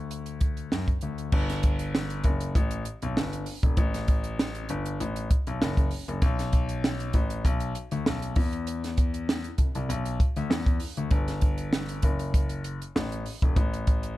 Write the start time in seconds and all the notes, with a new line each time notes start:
Already playing: D2
0.11 closed hi-hat
0.26 closed hi-hat
0.41 kick, closed hi-hat
0.57 closed hi-hat
0.72 F#2, snare
0.88 kick, closed hi-hat
1.01 D2, closed hi-hat
1.18 closed hi-hat
1.32 G1, kick, crash
1.49 snare, closed hi-hat
1.63 kick, closed hi-hat
1.79 closed hi-hat
1.95 snare
2.10 closed hi-hat
2.24 F#1, kick, closed hi-hat
2.41 closed hi-hat
2.55 A1, kick, closed hi-hat
2.71 closed hi-hat
2.85 closed hi-hat
3.02 B1, closed hi-hat
3.17 G1, snare
3.33 closed hi-hat
3.46 open hi-hat
3.63 E1, kick, closed hi-hat
3.77 A1, kick, closed hi-hat
3.94 snare, closed hi-hat
4.08 kick, closed hi-hat
4.24 closed hi-hat
4.39 snare
4.55 closed hi-hat
4.69 G1, closed hi-hat
4.86 closed hi-hat
5.00 A1, closed hi-hat
5.16 closed hi-hat
5.31 kick, closed hi-hat
5.47 B1, closed hi-hat
5.61 F#1, snare
5.77 kick, closed hi-hat
5.91 open hi-hat
6.08 F#1, closed hi-hat
6.22 B1, kick, closed hi-hat
6.39 snare, closed hi-hat
6.53 kick, closed hi-hat
6.69 closed hi-hat
6.84 snare
7.00 closed hi-hat
7.13 A1, kick, closed hi-hat
7.30 closed hi-hat
7.45 B1, kick, closed hi-hat
7.60 closed hi-hat
7.75 closed hi-hat
7.91 D2, closed hi-hat
8.06 B1, snare
8.22 closed hi-hat
8.36 E2, kick, open hi-hat
8.53 closed hi-hat
8.67 closed hi-hat
8.84 snare, closed hi-hat
8.98 kick, closed hi-hat
9.14 closed hi-hat
9.29 snare
9.44 closed hi-hat
9.58 C2, kick, closed hi-hat
9.75 C2, closed hi-hat
9.89 B1, closed hi-hat
10.06 closed hi-hat
10.20 kick, closed hi-hat
10.36 D2, closed hi-hat
10.50 E2, snare
10.66 kick, closed hi-hat
10.80 open hi-hat
10.97 D2, closed hi-hat
11.11 G1, kick, closed hi-hat
11.28 snare, closed hi-hat
11.41 kick, closed hi-hat
11.58 closed hi-hat
11.73 snare
11.89 closed hi-hat
12.02 F#1, kick, closed hi-hat
12.19 closed hi-hat
12.34 kick, closed hi-hat
12.49 closed hi-hat
12.64 closed hi-hat
12.82 closed hi-hat
12.96 A1, snare
13.12 closed hi-hat
13.26 open hi-hat
13.42 E1, kick, closed hi-hat
13.56 A1, kick, closed hi-hat
13.74 closed hi-hat
13.87 kick, closed hi-hat
14.03 closed hi-hat